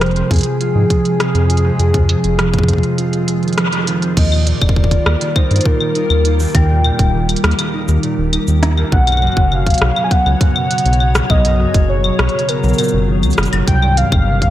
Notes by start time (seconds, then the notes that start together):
Already playing: F1 C3 F3 G#3 C4 G#4 G5
0.01 F3 C5, cross-stick, closed hi-hat
0.06 closed hi-hat
0.11 closed hi-hat
0.16 closed hi-hat
0.31 F2 C4 G#4, kick, closed hi-hat
0.34 closed hi-hat
0.36 closed hi-hat
0.38 closed hi-hat
0.41 closed hi-hat
0.43 F3, closed hi-hat
0.61 F4, closed hi-hat
0.75 G#2
0.90 C3, kick, closed hi-hat
1.05 F3, closed hi-hat
1.20 F4, cross-stick, closed hi-hat
1.35 F2, closed hi-hat
1.50 F4, closed hi-hat
1.57 closed hi-hat
1.65 F2
1.79 F2 F3 F4, closed hi-hat
1.94 C3, kick, closed hi-hat
2.09 C3, closed hi-hat
2.24 F1, closed hi-hat
2.39 F3, cross-stick, closed hi-hat
2.54 kick, closed hi-hat
2.59 kick
2.63 kick
2.68 F2 C4, kick, closed hi-hat
2.73 kick
2.78 kick
2.83 F3, closed hi-hat
2.98 F4, closed hi-hat
3.13 closed hi-hat
3.28 G#3, closed hi-hat
3.43 D#3, closed hi-hat
3.48 closed hi-hat
3.53 closed hi-hat
3.58 F3, cross-stick, closed hi-hat
3.72 F3, closed hi-hat
3.87 D#3, closed hi-hat
4.02 C4, closed hi-hat
4.17 D#2 D#3 G3 A#3 F4 A#4 D#5, kick, closed hi-hat, crash
4.32 A#2, claves
4.47 A#2 D5, closed hi-hat
4.62 D#1, kick, claves
4.69 kick
4.76 D#3, kick
4.84 kick
4.91 kick, closed hi-hat
5.06 D#2 A#3, cross-stick, claves
5.21 D#3, closed hi-hat
5.36 D#4 C5, kick, claves
5.51 G2, closed hi-hat
5.56 closed hi-hat
5.61 closed hi-hat
5.66 A#2 A#4, kick
5.80 D#3, claves
5.95 D#4, closed hi-hat
6.10 D#2, claves
6.25 D#4, closed hi-hat
6.40 D#2, cabasa
6.42 cabasa
6.45 cabasa
6.47 cabasa
6.50 cabasa
6.52 D#2 D#3 G4 G5, kick, closed hi-hat, cabasa, claves
6.70 A#2
6.84 A#2, claves
6.99 D#1, kick, closed hi-hat
7.14 D#3
7.29 closed hi-hat, claves
7.36 closed hi-hat
7.44 D#2 A#3, cross-stick, closed hi-hat
7.51 closed hi-hat
7.59 D#3, closed hi-hat, claves
7.74 D#4
7.88 D#2, cabasa
8.03 A#2, closed hi-hat
8.18 D#1 D#3
8.33 D#4, closed hi-hat, claves
8.48 D#2, cabasa
8.63 D#4, cross-stick, closed hi-hat
8.77 D#2, claves
8.92 B1 B2 C#3 F#3 B3 F#4 C#5 F#5, kick
9.07 F#2, closed hi-hat, claves
9.12 claves
9.17 claves
9.22 F#2, claves
9.27 claves
9.32 claves
9.37 F#1, kick
9.52 B2 F5, claves
9.66 kick, closed hi-hat
9.70 closed hi-hat
9.74 closed hi-hat
9.78 B1 F#3, cross-stick, closed hi-hat
9.96 B2, claves
10.04 G#5
10.11 B3 F#5, kick, closed hi-hat
10.26 C#2, claves
10.41 F#2, kick, closed hi-hat
10.56 B2, claves
10.71 B3, closed hi-hat
10.78 closed hi-hat
10.85 B1, closed hi-hat
10.93 closed hi-hat
11.00 B3, claves
11.15 B1, cross-stick, closed hi-hat, cabasa
11.30 B1 B2 G#4 D#5, kick, claves
11.45 F#2, closed hi-hat
11.60 F#2
11.74 F#1, kick, closed hi-hat
11.89 B2 C#5
12.04 claves
12.19 B1 F#3, cross-stick, closed hi-hat
12.29 closed hi-hat
12.34 B2
12.39 closed hi-hat
12.49 B3 A#4, closed hi-hat, claves
12.64 B1, cabasa
12.68 cabasa
12.74 cabasa
12.78 A#2, closed hi-hat, cabasa, claves
12.83 cabasa
12.88 cabasa
12.93 F#1 B2
13.08 D#3
13.23 C#2 F#3, closed hi-hat, cabasa, claves
13.30 closed hi-hat, cabasa
13.38 F#1 B2, cross-stick, cabasa
13.43 closed hi-hat, cabasa
13.53 F#1 B3, closed hi-hat, claves
13.67 C2 C3 D#3 A#3 C4 G4 A#4 G5, kick, closed hi-hat
13.82 G2, claves
13.97 G2 F5, closed hi-hat
14.12 G1, kick, claves
14.27 C3
14.42 kick, closed hi-hat